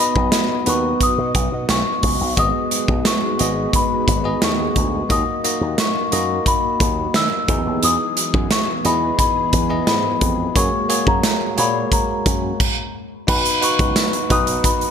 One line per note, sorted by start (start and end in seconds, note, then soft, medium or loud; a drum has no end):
0.00 0.66 B3 medium
0.00 2.33 B3 medium
0.00 0.66 D#4 medium
0.00 0.67 F#4 medium
0.00 12.56 F#4 medium
0.00 2.33 D#5 medium
0.00 2.38 D#5 medium
0.00 0.69 B5 medium
0.16 0.28 B1 medium
0.16 kick medium
0.32 snare loud
0.32 closed hi-hat loud
0.66 0.92 D#2 medium
0.66 1.73 B3 medium
0.66 1.73 D#4 medium
0.66 1.73 F#4 medium
0.66 1.73 B4 medium
0.66 1.03 C#6 medium
0.66 closed hi-hat medium
1.01 1.66 D#6 medium
1.01 kick medium
1.01 closed hi-hat medium
1.18 1.31 B2 loud
1.35 1.48 B1 medium
1.35 kick medium
1.35 closed hi-hat medium
1.52 1.65 B2 medium
1.69 1.82 B1 medium
1.69 2.40 C#6 medium
1.69 snare loud
1.69 closed hi-hat medium
2.03 2.16 C#2 medium
2.03 kick medium
2.03 open hi-hat medium
2.20 2.33 B1 medium
2.37 2.50 G#1 loud
2.37 5.07 G#3 medium
2.37 3.17 B3 medium
2.37 5.07 D#4 medium
2.37 3.17 F#4 medium
2.37 5.07 G#4 medium
2.37 3.17 G#4 medium
2.37 5.07 B4 medium
2.37 3.17 D#5 medium
2.37 3.08 D#6 loud
2.37 kick medium
2.37 closed hi-hat medium
2.71 closed hi-hat medium
2.88 3.01 B1 medium
2.88 kick medium
3.05 3.76 C#6 medium
3.05 snare loud
3.05 closed hi-hat medium
3.39 3.65 G#1 medium
3.39 4.06 B3 medium
3.39 4.06 F#4 medium
3.39 4.06 G#4 medium
3.39 4.06 D#5 medium
3.39 closed hi-hat medium
3.73 4.39 B5 loud
3.73 kick medium
3.73 closed hi-hat medium
4.08 4.33 G#1 medium
4.08 kick medium
4.08 closed hi-hat medium
4.24 4.91 B3 medium
4.24 4.91 F#4 medium
4.24 4.91 G#4 medium
4.24 4.91 D#5 medium
4.42 4.68 D#2 medium
4.42 5.13 C#6 medium
4.42 snare loud
4.42 closed hi-hat medium
4.76 5.02 D2 medium
4.76 kick medium
4.76 closed hi-hat medium
5.09 5.23 D#2 loud
5.09 5.36 A#3 medium
5.09 7.46 A#3 medium
5.09 5.36 D#4 medium
5.09 5.37 F#4 medium
5.09 5.37 D#5 medium
5.09 5.75 D#6 loud
5.09 kick loud
5.09 closed hi-hat medium
5.44 5.97 A#3 medium
5.44 5.97 D#4 medium
5.44 5.98 F#4 medium
5.44 5.98 D#5 medium
5.44 closed hi-hat medium
5.61 5.74 D#2 medium
5.78 6.49 C#6 medium
5.78 snare loud
5.78 closed hi-hat loud
6.12 6.38 F#2 medium
6.12 7.18 A#3 medium
6.12 7.18 D#4 medium
6.12 7.19 F#4 medium
6.12 7.19 D#5 medium
6.12 closed hi-hat medium
6.46 7.17 B5 loud
6.46 kick medium
6.46 closed hi-hat medium
6.80 7.06 D#2 medium
6.80 kick medium
6.80 closed hi-hat medium
7.14 7.27 D#3 medium
7.14 7.85 E6 loud
7.14 snare loud
7.14 closed hi-hat medium
7.48 7.61 E2 loud
7.48 10.52 E3 medium
7.48 8.57 B3 medium
7.48 10.52 B3 medium
7.48 8.58 D#4 medium
7.48 8.58 E4 medium
7.48 10.52 G#4 medium
7.48 8.58 G#4 medium
7.48 kick loud
7.48 closed hi-hat medium
7.66 7.79 D#2 medium
7.83 7.96 E2 loud
7.83 8.48 D#6 loud
7.83 closed hi-hat medium
8.17 closed hi-hat medium
8.34 8.47 F#2 medium
8.34 kick medium
8.51 8.67 C#6 medium
8.51 snare loud
8.51 closed hi-hat loud
8.84 9.10 E2 medium
8.84 9.51 B3 medium
8.84 9.51 E4 medium
8.84 9.52 G#4 medium
8.84 9.52 D#5 medium
8.84 9.17 B5 medium
8.84 closed hi-hat medium
9.19 9.87 B5 loud
9.19 kick medium
9.19 closed hi-hat medium
9.53 9.79 E2 medium
9.53 kick medium
9.53 closed hi-hat medium
9.69 10.36 B3 medium
9.69 10.36 E4 medium
9.69 10.37 G#4 medium
9.69 10.37 D#5 medium
9.87 10.13 G#2 medium
9.87 10.58 B5 medium
9.87 snare loud
9.87 closed hi-hat medium
10.21 10.47 F2 medium
10.21 kick medium
10.21 closed hi-hat medium
10.54 10.68 F#2 loud
10.54 12.57 G#3 medium
10.54 12.57 A#3 medium
10.54 10.82 A#3 medium
10.54 10.82 F#4 medium
10.54 10.82 G#4 medium
10.54 10.82 C#5 medium
10.54 11.03 C#6 loud
10.54 kick loud
10.54 closed hi-hat medium
10.89 11.42 A#3 medium
10.89 11.42 F#4 medium
10.89 11.43 G#4 medium
10.89 11.43 C#5 medium
10.89 closed hi-hat medium
11.07 11.20 F#2 medium
11.07 11.55 A#5 loud
11.07 kick medium
11.23 snare loud
11.23 closed hi-hat medium
11.57 11.84 A#2 medium
11.57 12.60 A#3 medium
11.57 12.60 F#4 medium
11.57 12.60 G#4 medium
11.57 12.60 C#5 medium
11.57 11.74 B5 medium
11.57 closed hi-hat medium
11.92 12.91 A#5 medium
11.92 kick loud
11.92 closed hi-hat medium
12.26 12.51 F#2 medium
12.26 kick medium
12.26 closed hi-hat medium
12.60 kick loud
12.60 crash medium
13.27 13.41 B1 loud
13.27 14.91 B3 medium
13.27 13.54 D#4 medium
13.27 14.91 D#4 medium
13.27 14.91 F#4 medium
13.27 13.55 F#4 medium
13.27 13.55 B4 medium
13.27 13.64 B5 medium
13.27 kick loud
13.27 crash medium
13.45 closed hi-hat medium
13.61 14.15 D#4 medium
13.61 14.15 F#4 medium
13.61 14.15 B4 medium
13.61 14.33 C#6 medium
13.61 closed hi-hat medium
13.79 13.92 C#2 medium
13.79 kick loud
13.79 closed hi-hat medium
13.96 snare loud
13.96 closed hi-hat loud
13.96 tambourine medium
14.13 closed hi-hat medium
14.30 14.56 B1 medium
14.30 14.91 D#4 medium
14.30 14.91 F#4 medium
14.30 14.91 B4 medium
14.30 14.66 D#6 medium
14.30 kick medium
14.30 closed hi-hat medium
14.47 closed hi-hat medium
14.64 14.91 B5 medium
14.64 kick loud
14.64 closed hi-hat medium
14.81 closed hi-hat soft